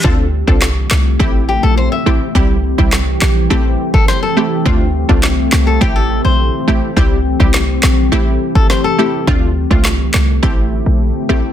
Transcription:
0.04 0.43 D2 loud
0.04 1.19 D3 medium
0.04 2.33 A3 medium
0.04 0.26 C4 medium
0.04 2.33 C4 medium
0.04 0.26 D4 medium
0.04 1.19 F4 medium
0.04 0.26 F4 medium
0.04 0.26 A4 loud
0.04 kick loud
0.47 0.86 C2 medium
0.47 0.69 C4 medium
0.47 0.69 D4 medium
0.47 0.69 F4 medium
0.47 0.69 A4 medium
0.47 kick medium
0.62 snare loud
0.62 clap medium
0.91 1.17 C2 medium
0.91 snare loud
0.91 clap medium
1.19 1.58 A1 loud
1.19 4.62 E3 medium
1.19 1.99 A3 medium
1.19 1.99 C4 medium
1.19 1.99 E4 medium
1.19 4.62 G4 medium
1.19 2.00 G4 loud
1.19 kick medium
1.49 1.62 G4 medium
1.63 1.89 A#1 medium
1.63 1.77 A4 medium
1.77 1.91 C5 medium
1.92 2.33 E5 medium
2.06 2.19 A1 medium
2.06 2.28 A3 medium
2.06 2.28 C4 medium
2.06 2.28 E4 medium
2.06 2.28 G4 medium
2.35 2.74 C2 loud
2.35 2.56 G3 medium
2.35 3.49 G3 medium
2.35 2.57 C4 medium
2.35 3.49 C4 medium
2.35 2.57 E4 medium
2.35 2.57 G4 loud
2.35 kick loud
2.78 3.17 C2 medium
2.78 3.00 G3 medium
2.78 3.00 C4 medium
2.78 3.00 E4 medium
2.78 3.00 G4 medium
2.78 kick loud
2.93 snare loud
2.93 clap medium
3.22 3.47 A#1 medium
3.22 snare loud
3.22 clap medium
3.50 3.76 A1 loud
3.50 4.30 A3 loud
3.50 6.93 A3 medium
3.50 4.30 C4 medium
3.50 9.23 C4 medium
3.50 4.30 E4 medium
3.50 4.30 G4 loud
3.94 4.08 A4 medium
3.94 kick loud
4.08 4.22 C5 medium
4.08 snare medium
4.23 4.64 A4 medium
4.37 4.58 A3 medium
4.37 4.58 C4 medium
4.37 4.58 E4 medium
4.37 4.59 G4 medium
4.65 5.04 D2 loud
4.65 5.80 D3 medium
4.65 4.87 A3 medium
4.65 4.87 C4 medium
4.65 4.87 D4 medium
4.65 5.80 F4 medium
4.65 4.87 F4 loud
4.65 kick loud
5.09 5.48 C2 loud
5.09 5.30 A3 medium
5.09 5.30 C4 medium
5.09 5.31 D4 medium
5.09 5.31 F4 medium
5.09 kick medium
5.23 snare loud
5.23 clap medium
5.52 5.78 C2 medium
5.52 snare loud
5.52 clap medium
5.67 5.81 A4 medium
5.81 6.20 A1 loud
5.81 6.95 E3 medium
5.81 6.61 A3 medium
5.81 6.61 C4 medium
5.81 6.61 E4 medium
5.81 9.24 G4 medium
5.81 5.95 G4 medium
5.81 6.61 G4 loud
5.81 kick medium
5.96 6.23 A4 medium
6.25 6.50 A#1 medium
6.25 6.93 C5 medium
6.68 6.81 A1 medium
6.68 6.89 A3 medium
6.68 6.89 C4 medium
6.68 6.89 E4 medium
6.68 6.89 G4 medium
6.96 7.35 C2 loud
6.96 9.25 E3 medium
6.96 7.18 G3 medium
6.96 8.11 G3 medium
6.96 7.18 C4 medium
6.96 7.18 E4 medium
6.96 7.18 G4 loud
6.96 kick loud
7.40 7.78 C2 medium
7.40 7.61 G3 medium
7.40 7.61 C4 medium
7.40 7.61 E4 medium
7.40 7.62 G4 medium
7.40 kick medium
7.54 cross-stick medium
7.54 snare loud
7.54 clap loud
7.83 8.09 A#1 medium
7.83 snare loud
7.83 clap medium
8.12 8.38 A1 loud
8.12 8.92 A3 loud
8.12 11.53 A3 medium
8.12 8.92 C4 medium
8.12 8.92 E4 medium
8.12 8.92 G4 loud
8.55 8.69 A4 medium
8.55 kick loud
8.70 8.84 C5 medium
8.70 snare medium
8.84 9.25 A4 medium
8.98 9.20 A3 medium
8.98 9.20 C4 medium
8.98 9.20 E4 medium
8.98 9.20 G4 medium
9.27 9.66 D2 loud
9.27 10.42 D3 medium
9.27 9.49 A3 medium
9.27 10.42 C4 medium
9.27 9.49 C4 medium
9.27 9.49 D4 medium
9.27 10.42 F4 medium
9.27 9.49 F4 loud
9.27 kick loud
9.70 10.09 C2 medium
9.70 9.92 A3 medium
9.70 9.92 C4 medium
9.70 9.92 D4 medium
9.70 9.92 F4 medium
9.70 kick loud
9.85 snare loud
9.85 clap medium
10.14 10.40 C2 medium
10.14 snare loud
10.14 clap medium
10.43 10.81 A1 loud
10.43 11.53 E3 medium
10.43 11.22 A3 medium
10.43 11.22 C4 medium
10.43 11.53 C4 medium
10.43 11.23 E4 medium
10.43 11.53 G4 medium
10.43 11.23 G4 loud
10.43 kick medium
10.86 11.12 A#1 medium
11.29 11.42 A1 medium
11.29 11.51 A3 medium
11.29 11.51 C4 medium
11.29 11.51 E4 medium
11.29 11.51 G4 medium

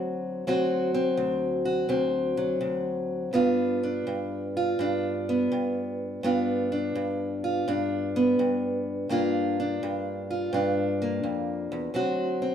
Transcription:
0.00 0.46 D2 medium
0.00 0.46 F#3 medium
0.00 0.44 C4 medium
0.00 0.44 F#4 medium
0.47 1.16 D2 medium
0.47 2.36 F#3 medium
0.47 0.93 C4 medium
0.47 1.64 F#4 medium
0.94 1.88 C4 medium
1.17 1.88 D2 medium
1.65 3.31 F#4 medium
1.89 2.59 D2 medium
1.89 3.31 C4 medium
2.37 3.33 F#3 medium
2.61 3.32 D2 medium
3.33 4.06 G2 medium
3.33 5.26 B3 medium
3.33 3.83 D4 medium
3.33 4.56 F4 medium
3.83 4.80 D4 medium
4.07 4.79 G2 medium
4.57 6.25 F4 medium
4.79 5.51 G2 medium
4.79 6.25 D4 medium
5.29 6.20 B3 medium
5.52 6.23 G2 medium
6.23 6.95 G2 medium
6.23 8.15 B3 medium
6.23 6.71 D4 medium
6.23 7.44 F4 medium
6.72 7.68 D4 medium
6.95 7.67 G2 medium
7.44 9.07 F4 medium
7.68 8.38 G2 medium
7.68 9.11 D4 medium
8.16 9.07 B3 medium
8.39 9.07 G2 medium
9.09 9.81 G2 medium
9.09 11.01 A#3 medium
9.09 9.59 D4 medium
9.09 10.29 F4 medium
9.60 10.54 D4 medium
9.83 10.51 G2 medium
10.31 11.94 F4 medium
10.53 11.23 G2 medium
10.53 11.94 D4 medium
11.02 11.94 A#3 medium
11.23 11.71 F2 medium
11.72 11.93 E2 medium
11.94 12.55 D2 medium
11.94 12.55 F#3 medium
11.94 12.41 C4 medium
11.94 12.55 F#4 medium
12.42 12.55 C4 medium

